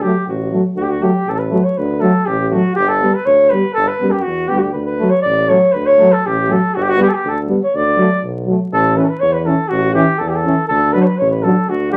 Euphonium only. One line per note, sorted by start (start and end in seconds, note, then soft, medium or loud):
0.04 0.14 F#3 medium
0.53 0.63 F#3 soft
1.02 1.12 F#3 medium
1.52 1.62 F#3 medium
2.02 2.12 F#3 medium
2.53 2.63 F#3 medium
3.03 3.13 G3 medium
3.53 3.62 G3 medium
4.02 4.12 G3 medium
4.51 4.61 G3 medium
5.02 5.12 F#3 medium
5.50 5.60 F#3 medium
6.01 6.11 F#3 medium
6.50 6.60 F#3 medium
6.98 7.09 G3 medium
7.48 7.59 G3 medium
7.97 8.08 F#3 medium
8.46 8.57 F#3 soft
8.97 9.07 E3 medium
9.45 9.56 E3 medium
9.95 10.05 E3 medium
10.46 10.56 E3 medium
10.96 11.06 F#3 medium
11.44 11.54 F#3 medium